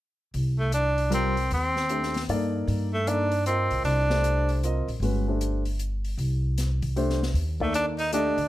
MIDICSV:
0, 0, Header, 1, 5, 480
1, 0, Start_track
1, 0, Tempo, 389610
1, 420, Time_signature, 3, 2, 24, 8
1, 10449, End_track
2, 0, Start_track
2, 0, Title_t, "Grand piano"
2, 0, Program_c, 0, 0
2, 1357, Note_on_c, 0, 55, 67
2, 1361, Note_on_c, 0, 60, 61
2, 1362, Note_on_c, 0, 65, 61
2, 1366, Note_on_c, 0, 70, 78
2, 1645, Note_off_c, 0, 55, 0
2, 1647, Note_off_c, 0, 60, 0
2, 1648, Note_off_c, 0, 65, 0
2, 1650, Note_off_c, 0, 70, 0
2, 2340, Note_on_c, 0, 57, 54
2, 2342, Note_on_c, 0, 62, 45
2, 2344, Note_on_c, 0, 67, 53
2, 2350, Note_on_c, 0, 72, 61
2, 2617, Note_off_c, 0, 57, 0
2, 2618, Note_off_c, 0, 62, 0
2, 2619, Note_off_c, 0, 67, 0
2, 2622, Note_off_c, 0, 72, 0
2, 2826, Note_on_c, 0, 58, 68
2, 2826, Note_on_c, 0, 63, 60
2, 2832, Note_on_c, 0, 74, 75
2, 2833, Note_on_c, 0, 69, 58
2, 3549, Note_off_c, 0, 63, 0
2, 3550, Note_off_c, 0, 58, 0
2, 3552, Note_off_c, 0, 74, 0
2, 3553, Note_off_c, 0, 69, 0
2, 3787, Note_on_c, 0, 58, 55
2, 3793, Note_on_c, 0, 63, 51
2, 3793, Note_on_c, 0, 69, 46
2, 3795, Note_on_c, 0, 74, 57
2, 4061, Note_off_c, 0, 58, 0
2, 4064, Note_off_c, 0, 63, 0
2, 4064, Note_off_c, 0, 69, 0
2, 4065, Note_off_c, 0, 74, 0
2, 4266, Note_on_c, 0, 60, 64
2, 4272, Note_on_c, 0, 65, 62
2, 4274, Note_on_c, 0, 75, 74
2, 4275, Note_on_c, 0, 70, 60
2, 4989, Note_off_c, 0, 60, 0
2, 4992, Note_off_c, 0, 65, 0
2, 4994, Note_off_c, 0, 70, 0
2, 4994, Note_off_c, 0, 75, 0
2, 5053, Note_on_c, 0, 57, 58
2, 5055, Note_on_c, 0, 62, 49
2, 5057, Note_on_c, 0, 72, 62
2, 5059, Note_on_c, 0, 67, 50
2, 5670, Note_off_c, 0, 57, 0
2, 5671, Note_off_c, 0, 62, 0
2, 5672, Note_off_c, 0, 72, 0
2, 5673, Note_off_c, 0, 67, 0
2, 5714, Note_on_c, 0, 65, 57
2, 5716, Note_on_c, 0, 60, 61
2, 5717, Note_on_c, 0, 70, 56
2, 5730, Note_on_c, 0, 75, 72
2, 5984, Note_off_c, 0, 65, 0
2, 5985, Note_off_c, 0, 60, 0
2, 5985, Note_off_c, 0, 70, 0
2, 5992, Note_off_c, 0, 75, 0
2, 6190, Note_on_c, 0, 56, 54
2, 6195, Note_on_c, 0, 66, 50
2, 6196, Note_on_c, 0, 61, 52
2, 6203, Note_on_c, 0, 71, 60
2, 6462, Note_off_c, 0, 56, 0
2, 6464, Note_off_c, 0, 66, 0
2, 6465, Note_off_c, 0, 61, 0
2, 6468, Note_off_c, 0, 71, 0
2, 6505, Note_on_c, 0, 57, 55
2, 6509, Note_on_c, 0, 62, 52
2, 6511, Note_on_c, 0, 67, 48
2, 6518, Note_on_c, 0, 72, 57
2, 6915, Note_off_c, 0, 57, 0
2, 6917, Note_off_c, 0, 62, 0
2, 6918, Note_off_c, 0, 67, 0
2, 6922, Note_off_c, 0, 72, 0
2, 8579, Note_on_c, 0, 57, 70
2, 8581, Note_on_c, 0, 67, 61
2, 8586, Note_on_c, 0, 62, 61
2, 8591, Note_on_c, 0, 72, 74
2, 8855, Note_off_c, 0, 57, 0
2, 8856, Note_off_c, 0, 67, 0
2, 8859, Note_off_c, 0, 62, 0
2, 8861, Note_off_c, 0, 72, 0
2, 9365, Note_on_c, 0, 58, 65
2, 9371, Note_on_c, 0, 63, 58
2, 9374, Note_on_c, 0, 69, 60
2, 9380, Note_on_c, 0, 74, 65
2, 9984, Note_off_c, 0, 58, 0
2, 9987, Note_off_c, 0, 63, 0
2, 9988, Note_off_c, 0, 69, 0
2, 9991, Note_off_c, 0, 74, 0
2, 10011, Note_on_c, 0, 57, 76
2, 10019, Note_on_c, 0, 62, 69
2, 10024, Note_on_c, 0, 67, 72
2, 10025, Note_on_c, 0, 75, 80
2, 10290, Note_off_c, 0, 57, 0
2, 10294, Note_off_c, 0, 62, 0
2, 10297, Note_off_c, 0, 67, 0
2, 10297, Note_off_c, 0, 75, 0
2, 10449, End_track
3, 0, Start_track
3, 0, Title_t, "Tenor saxophone"
3, 0, Program_c, 1, 66
3, 727, Note_on_c, 1, 57, 75
3, 889, Note_off_c, 1, 57, 0
3, 912, Note_on_c, 1, 62, 92
3, 1354, Note_off_c, 1, 62, 0
3, 1402, Note_on_c, 1, 60, 84
3, 1839, Note_off_c, 1, 60, 0
3, 1890, Note_on_c, 1, 60, 84
3, 2787, Note_off_c, 1, 60, 0
3, 3616, Note_on_c, 1, 57, 83
3, 3796, Note_on_c, 1, 62, 103
3, 3815, Note_off_c, 1, 57, 0
3, 4262, Note_off_c, 1, 62, 0
3, 4269, Note_on_c, 1, 60, 80
3, 4713, Note_off_c, 1, 60, 0
3, 4740, Note_on_c, 1, 62, 93
3, 5652, Note_off_c, 1, 62, 0
3, 9393, Note_on_c, 1, 57, 74
3, 9542, Note_off_c, 1, 57, 0
3, 9550, Note_on_c, 1, 62, 97
3, 9686, Note_off_c, 1, 62, 0
3, 9842, Note_on_c, 1, 63, 87
3, 10005, Note_off_c, 1, 63, 0
3, 10024, Note_on_c, 1, 62, 88
3, 10449, Note_off_c, 1, 62, 0
3, 10449, End_track
4, 0, Start_track
4, 0, Title_t, "Upright bass"
4, 0, Program_c, 2, 32
4, 418, Note_on_c, 2, 36, 76
4, 1811, Note_off_c, 2, 36, 0
4, 1858, Note_on_c, 2, 39, 82
4, 2771, Note_off_c, 2, 39, 0
4, 2815, Note_on_c, 2, 43, 71
4, 3265, Note_off_c, 2, 43, 0
4, 3294, Note_on_c, 2, 43, 86
4, 4516, Note_off_c, 2, 43, 0
4, 4568, Note_on_c, 2, 35, 66
4, 4720, Note_off_c, 2, 35, 0
4, 4727, Note_on_c, 2, 36, 76
4, 5952, Note_off_c, 2, 36, 0
4, 6004, Note_on_c, 2, 34, 62
4, 6150, Note_off_c, 2, 34, 0
4, 6158, Note_on_c, 2, 31, 80
4, 7560, Note_off_c, 2, 31, 0
4, 7607, Note_on_c, 2, 36, 79
4, 9004, Note_off_c, 2, 36, 0
4, 9039, Note_on_c, 2, 39, 80
4, 10265, Note_off_c, 2, 39, 0
4, 10311, Note_on_c, 2, 38, 67
4, 10449, Note_off_c, 2, 38, 0
4, 10449, End_track
5, 0, Start_track
5, 0, Title_t, "Drums"
5, 417, Note_on_c, 9, 46, 38
5, 540, Note_off_c, 9, 46, 0
5, 890, Note_on_c, 9, 42, 54
5, 1014, Note_off_c, 9, 42, 0
5, 1205, Note_on_c, 9, 46, 37
5, 1328, Note_off_c, 9, 46, 0
5, 1377, Note_on_c, 9, 42, 52
5, 1500, Note_off_c, 9, 42, 0
5, 1688, Note_on_c, 9, 46, 37
5, 1812, Note_off_c, 9, 46, 0
5, 1856, Note_on_c, 9, 46, 44
5, 1979, Note_off_c, 9, 46, 0
5, 2171, Note_on_c, 9, 38, 32
5, 2294, Note_off_c, 9, 38, 0
5, 2332, Note_on_c, 9, 42, 47
5, 2455, Note_off_c, 9, 42, 0
5, 2500, Note_on_c, 9, 38, 28
5, 2623, Note_off_c, 9, 38, 0
5, 2638, Note_on_c, 9, 46, 39
5, 2664, Note_on_c, 9, 38, 41
5, 2761, Note_off_c, 9, 46, 0
5, 2787, Note_off_c, 9, 38, 0
5, 2821, Note_on_c, 9, 46, 45
5, 2944, Note_off_c, 9, 46, 0
5, 3305, Note_on_c, 9, 46, 41
5, 3428, Note_off_c, 9, 46, 0
5, 3784, Note_on_c, 9, 42, 51
5, 3907, Note_off_c, 9, 42, 0
5, 4085, Note_on_c, 9, 46, 39
5, 4209, Note_off_c, 9, 46, 0
5, 4263, Note_on_c, 9, 42, 47
5, 4386, Note_off_c, 9, 42, 0
5, 4566, Note_on_c, 9, 46, 32
5, 4689, Note_off_c, 9, 46, 0
5, 4739, Note_on_c, 9, 46, 43
5, 4862, Note_off_c, 9, 46, 0
5, 5051, Note_on_c, 9, 38, 45
5, 5174, Note_off_c, 9, 38, 0
5, 5223, Note_on_c, 9, 42, 48
5, 5346, Note_off_c, 9, 42, 0
5, 5528, Note_on_c, 9, 46, 37
5, 5651, Note_off_c, 9, 46, 0
5, 5710, Note_on_c, 9, 42, 48
5, 5833, Note_off_c, 9, 42, 0
5, 6017, Note_on_c, 9, 46, 34
5, 6140, Note_off_c, 9, 46, 0
5, 6191, Note_on_c, 9, 46, 39
5, 6314, Note_off_c, 9, 46, 0
5, 6664, Note_on_c, 9, 42, 50
5, 6787, Note_off_c, 9, 42, 0
5, 6966, Note_on_c, 9, 46, 36
5, 7089, Note_off_c, 9, 46, 0
5, 7137, Note_on_c, 9, 42, 47
5, 7260, Note_off_c, 9, 42, 0
5, 7447, Note_on_c, 9, 46, 34
5, 7571, Note_off_c, 9, 46, 0
5, 7620, Note_on_c, 9, 46, 39
5, 7743, Note_off_c, 9, 46, 0
5, 8103, Note_on_c, 9, 42, 54
5, 8109, Note_on_c, 9, 38, 34
5, 8226, Note_off_c, 9, 42, 0
5, 8232, Note_off_c, 9, 38, 0
5, 8406, Note_on_c, 9, 46, 34
5, 8410, Note_on_c, 9, 36, 52
5, 8529, Note_off_c, 9, 46, 0
5, 8533, Note_off_c, 9, 36, 0
5, 8581, Note_on_c, 9, 46, 42
5, 8704, Note_off_c, 9, 46, 0
5, 8744, Note_on_c, 9, 38, 28
5, 8867, Note_off_c, 9, 38, 0
5, 8905, Note_on_c, 9, 38, 42
5, 9028, Note_off_c, 9, 38, 0
5, 9058, Note_on_c, 9, 46, 46
5, 9182, Note_off_c, 9, 46, 0
5, 9368, Note_on_c, 9, 36, 39
5, 9491, Note_off_c, 9, 36, 0
5, 9537, Note_on_c, 9, 42, 52
5, 9660, Note_off_c, 9, 42, 0
5, 9837, Note_on_c, 9, 46, 38
5, 9961, Note_off_c, 9, 46, 0
5, 10010, Note_on_c, 9, 42, 55
5, 10133, Note_off_c, 9, 42, 0
5, 10320, Note_on_c, 9, 46, 35
5, 10443, Note_off_c, 9, 46, 0
5, 10449, End_track
0, 0, End_of_file